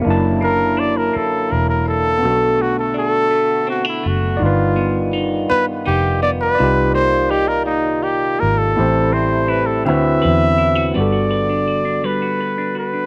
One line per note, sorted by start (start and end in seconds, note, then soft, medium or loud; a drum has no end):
0.00 2.20 F#3 medium
0.00 2.17 A#3 medium
0.00 0.11 B3 medium
0.00 0.44 E4 medium
0.04 1.10 F#1 medium
0.04 2.22 F#2 medium
0.04 4.36 D3 medium
0.04 2.20 A#3 medium
0.04 2.18 D4 medium
0.04 2.20 E4 medium
0.10 2.21 A5 medium
0.41 1.12 A#3 medium
0.41 0.81 A#4 loud
0.77 1.50 D4 medium
0.77 0.99 D5 loud
0.97 1.18 A#4 medium
1.13 1.84 A#3 medium
1.13 1.53 A4 medium
1.13 muted fingered electric bass stroke soft
1.50 2.25 E1 medium
1.50 2.94 D4 medium
1.50 1.69 A#4 loud
1.70 1.86 A#4 medium
1.85 2.29 A#3 medium
1.85 2.63 A4 loud
2.19 4.40 B2 medium
2.19 4.37 A3 medium
2.19 4.35 B3 medium
2.19 6.54 B3 medium
2.19 2.28 C#4 soft
2.19 4.38 F#4 medium
2.25 4.01 B1 loud
2.25 4.40 D4 medium
2.25 4.38 F#4 medium
2.25 4.39 A4 medium
2.59 3.29 A3 medium
2.59 2.78 F#4 medium
2.79 2.95 A4 medium
2.94 3.67 D4 medium
2.94 3.65 A4 loud
3.31 4.02 A3 medium
3.67 3.85 C4 medium
3.67 3.86 F#4 medium
3.85 4.47 D4 medium
3.85 4.09 E4 medium
4.03 4.38 F#1 medium
4.03 4.47 A3 medium
4.03 4.44 F#4 medium
4.37 6.58 G2 medium
4.37 8.72 D#3 medium
4.37 6.56 G3 medium
4.37 6.54 D#4 medium
4.37 8.72 F4 medium
4.37 6.53 D5 medium
4.42 5.46 G1 loud
4.42 5.14 F4 medium
4.42 6.56 F4 medium
4.42 6.57 B4 medium
4.76 5.48 B3 medium
5.13 5.85 D#4 medium
5.49 6.21 B3 medium
5.49 5.66 B4 loud
5.49 muted fingered electric bass stroke soft
5.86 6.55 F1 medium
5.86 7.30 D#4 medium
5.86 6.20 G4 loud
6.22 6.66 B3 medium
6.22 6.31 D5 loud
6.41 6.91 B4 loud
6.55 8.74 A#2 medium
6.55 8.77 C3 medium
6.55 8.72 D#4 medium
6.55 8.71 D5 medium
6.55 8.74 D5 medium
6.60 8.37 C2 loud
6.60 8.73 F4 medium
6.60 8.75 G4 medium
6.95 7.65 A#3 medium
6.95 7.32 C5 loud
7.30 8.01 D#4 medium
7.30 7.49 G4 loud
7.48 7.65 A#4 medium
7.66 8.38 A#3 medium
7.66 8.05 D#4 loud
8.03 8.83 D#4 medium
8.03 8.41 G4 loud
8.39 8.74 G#1 medium
8.39 8.83 A#3 medium
8.39 8.59 A#4 loud
8.58 9.15 A4 loud
8.75 9.88 A1 loud
8.75 9.92 A2 medium
8.75 10.92 C3 medium
8.75 9.85 G3 medium
8.75 9.84 A3 medium
8.75 8.82 B3 medium
8.75 10.93 E4 medium
8.75 9.86 E4 medium
8.75 9.86 G4 medium
8.80 9.84 C4 medium
8.80 9.87 C5 medium
9.12 9.93 C4 medium
9.12 9.51 C5 loud
9.48 9.92 E4 medium
9.48 9.68 B4 loud
9.66 9.85 A4 medium
9.85 10.20 D2 loud
9.85 13.06 D3 medium
9.85 10.94 F#3 medium
9.85 10.95 C4 medium
9.85 10.95 E4 medium
9.85 10.96 F#4 medium
9.85 10.94 B4 medium
9.85 10.91 E5 loud
9.90 10.97 B4 medium
10.22 10.92 E2 loud
10.22 10.95 B4 medium
10.58 10.75 E4 medium
10.75 11.01 F#4 medium
10.92 12.03 G3 medium
10.92 13.06 B3 medium
10.92 13.06 D4 soft
10.92 11.29 B4 medium
10.96 12.78 G1 medium
10.96 13.06 F#4 medium
10.96 12.07 D5 medium
11.01 13.06 A4 medium
11.12 11.66 F#4 soft
11.31 12.03 B4 medium
11.49 11.85 D4 soft
11.68 12.21 F#4 medium
11.85 12.57 D4 medium
12.04 13.06 G3 medium
12.04 12.39 B4 medium
12.04 12.77 B4 medium
12.22 12.74 F#4 medium
12.41 13.06 B4 medium
12.58 12.93 D4 medium
12.75 13.06 C#2 medium
12.75 13.06 F#4 medium
12.75 13.06 B4 loud
12.94 13.06 D4 medium